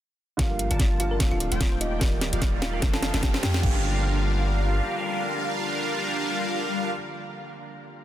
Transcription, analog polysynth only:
0.39 0.68 G3 medium
0.39 0.68 D4 medium
0.39 0.68 F4 medium
0.39 0.68 A#4 medium
0.39 0.68 F5 loud
0.71 1.18 G3 medium
0.71 1.18 D4 medium
0.71 1.18 F4 medium
0.71 1.18 A#4 medium
0.71 1.18 A5 loud
1.20 1.29 A3 loud
1.20 1.29 D4 medium
1.20 1.29 F4 medium
1.20 1.29 C5 medium
1.20 1.29 D5 loud
1.31 1.49 A3 medium
1.31 1.49 D4 medium
1.31 1.49 F4 medium
1.31 1.49 C5 medium
1.31 1.49 F5 medium
1.52 1.79 A3 loud
1.52 1.79 D4 medium
1.52 1.79 F4 medium
1.52 1.79 C5 medium
1.52 1.79 G5 loud
1.81 2.30 A#3 medium
1.81 2.30 D#4 medium
1.81 2.30 G4 medium
1.81 2.30 D5 medium
1.81 2.30 G5 medium
2.33 2.80 A#3 medium
2.33 2.80 D#4 medium
2.33 2.80 G4 medium
2.33 2.80 D5 medium
2.33 2.80 F5 loud
2.82 3.11 A3 medium
2.82 3.11 D#4 medium
2.82 3.11 F4 medium
2.82 3.11 C5 medium
2.82 3.11 F5 loud
3.14 3.41 A3 medium
3.14 3.41 D#4 medium
3.14 3.41 F4 medium
3.14 3.41 C5 medium
3.14 3.41 F5 medium
3.43 3.61 A3 medium
3.43 3.61 D#4 medium
3.43 3.61 F4 medium
3.43 3.61 C5 medium
3.43 3.61 G5 loud
3.63 6.90 G3 medium
3.63 6.90 D4 medium
3.63 6.90 F4 medium
3.63 6.90 A#4 medium
3.63 6.90 F5 loud

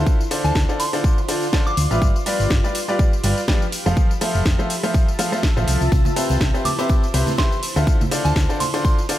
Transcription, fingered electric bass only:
0.44 0.51 D2 medium
0.55 0.64 D2 medium
1.77 1.86 D2 medium
1.91 1.97 A1 loud
2.40 2.46 G1 medium
2.50 2.59 G1 medium
3.24 3.32 G1 medium
3.86 3.93 F1 medium
4.35 4.41 F1 medium
4.46 4.54 F1 medium
5.57 5.63 A1 loud
5.68 5.76 C2 loud
5.81 5.88 C2 medium
5.92 6.00 C2 loud
6.30 6.36 C2 medium
6.41 6.49 C2 medium
7.14 7.22 C2 medium
7.76 7.83 D2 medium
8.25 8.32 D2 medium
8.36 8.44 D2 medium

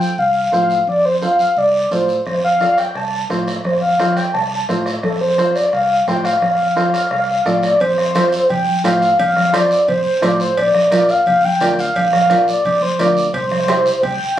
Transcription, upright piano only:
0.52 0.77 F4 medium
0.52 0.77 A4 medium
0.52 0.77 C5 medium
1.22 1.46 F4 medium
1.22 1.47 A4 medium
1.22 1.47 C5 medium
1.91 2.16 F4 medium
1.91 2.16 A4 medium
1.91 2.16 D5 medium
2.60 2.85 F4 medium
2.60 2.85 A4 medium
2.60 2.85 D5 medium
3.30 3.54 F4 medium
3.30 3.54 A4 medium
3.30 3.55 C5 medium
3.99 4.24 F4 medium
3.99 4.24 A4 medium
3.99 4.24 C5 medium
4.69 4.93 F4 medium
4.69 4.93 A4 medium
4.69 4.93 C5 medium
5.38 5.62 F4 medium
5.38 5.63 A4 medium
5.38 5.63 C5 medium
6.08 6.32 F4 medium
6.08 6.32 A4 medium
6.08 6.32 C5 medium
6.76 7.01 F4 medium
6.76 7.01 A4 medium
6.76 7.01 C5 medium
7.45 7.70 F4 medium
7.45 7.70 A4 medium
7.45 7.70 D5 medium
8.15 8.39 F4 medium
8.15 8.39 A4 medium
8.15 8.40 C5 medium
8.84 9.09 F4 medium
8.84 9.09 A4 medium
8.84 9.09 C5 medium
9.53 9.77 F4 medium
9.53 9.78 A4 medium
9.53 9.78 C5 medium
10.22 10.46 F4 medium
10.22 10.47 A4 medium
10.22 10.47 C5 medium
10.91 11.16 F4 medium
10.91 11.16 A#4 medium
10.91 11.16 D5 medium
11.61 11.85 F4 medium
11.61 11.85 A#4 medium
11.61 11.86 D5 medium
12.30 12.54 F4 medium
12.30 12.55 A#4 medium
12.30 12.55 D5 medium
12.99 13.23 F4 medium
12.99 13.24 A#4 medium
12.99 13.24 D5 medium
13.68 13.93 E4 medium
13.68 13.93 G4 medium
13.68 13.93 C5 medium

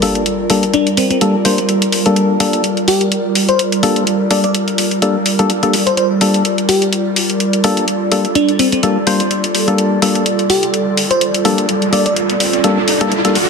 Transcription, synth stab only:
0.02 0.24 G3 loud
0.02 0.24 A#3 medium
0.02 0.24 D4 medium
0.02 0.24 A4 loud
0.50 0.64 G3 medium
0.50 0.64 A#3 medium
0.50 0.64 D4 medium
0.50 0.64 A4 medium
1.21 1.36 G3 medium
1.21 1.36 A#3 medium
1.21 1.36 D4 medium
1.21 1.36 A4 medium
1.45 1.60 G3 medium
1.45 1.59 A#3 medium
1.45 1.60 D4 medium
1.45 1.60 C5 medium
2.06 2.38 G3 medium
2.06 2.38 A#3 medium
2.06 2.38 D4 medium
2.06 2.38 A4 medium
2.40 2.62 G3 medium
2.40 2.62 A#3 medium
2.40 2.62 D4 medium
2.40 2.62 A4 medium
3.83 4.05 G3 loud
3.83 4.05 A#3 medium
3.83 4.05 D4 medium
3.83 4.05 A4 loud
4.31 4.45 G3 medium
4.31 4.45 A#3 medium
4.31 4.45 D4 medium
4.31 4.45 A4 medium
5.02 5.17 G3 medium
5.02 5.17 A#3 medium
5.02 5.17 D4 medium
5.02 5.17 A4 medium
5.39 5.51 G3 medium
5.39 5.51 A#3 medium
5.39 5.51 D4 medium
5.39 5.51 A4 loud
5.63 5.75 G3 medium
5.63 5.75 A#3 medium
5.63 5.75 D4 medium
5.63 5.75 A4 medium
6.21 6.43 G3 medium
6.21 6.43 A#3 medium
6.21 6.43 D4 medium
6.21 6.43 A4 medium
7.64 7.86 G3 medium
7.64 7.86 A#3 medium
7.64 7.86 D4 medium
7.64 7.86 A4 loud
8.12 8.26 G3 medium
8.12 8.26 A#3 medium
8.12 8.26 D4 medium
8.12 8.26 A4 medium
8.83 8.98 G3 medium
8.83 8.98 A#3 medium
8.83 8.98 D4 medium
8.83 8.98 A4 medium
9.07 9.21 G3 medium
9.07 9.21 A#3 medium
9.07 9.21 D4 medium
9.07 9.21 C5 medium
9.68 10.00 G3 medium
9.68 10.00 A#3 medium
9.68 10.00 D4 medium
9.68 10.00 A4 medium
10.02 10.24 G3 medium
10.02 10.24 A#3 medium
10.02 10.24 D4 medium
10.02 10.24 A4 medium
11.45 11.67 G3 loud
11.45 11.67 A#3 medium
11.45 11.67 D4 medium
11.45 11.67 A4 loud
11.93 12.07 G3 medium
11.93 12.07 A#3 medium
11.93 12.07 D4 medium
11.93 12.07 A4 medium
12.64 12.79 G3 medium
12.64 12.79 A#3 medium
12.64 12.79 D4 medium
12.64 12.79 A4 medium
13.01 13.13 G3 medium
13.01 13.13 A#3 medium
13.01 13.13 D4 medium
13.01 13.13 A4 loud
13.25 13.37 G3 medium
13.25 13.37 A#3 medium
13.25 13.37 D4 medium
13.25 13.37 A4 loud

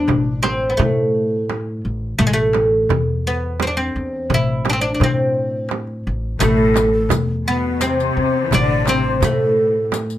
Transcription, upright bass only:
0.08 0.74 A1 medium
0.79 1.80 A2 loud
1.85 2.17 A1 medium
2.19 2.85 A1 medium
2.90 3.91 E2 medium
3.96 4.28 E2 medium
4.30 4.96 A1 medium
5.01 6.02 A2 medium
6.07 6.39 A1 medium
6.41 7.08 A1 medium
7.11 8.13 E2 medium
8.17 8.49 E2 medium
8.53 9.19 A1 medium
9.22 10.18 A2 medium

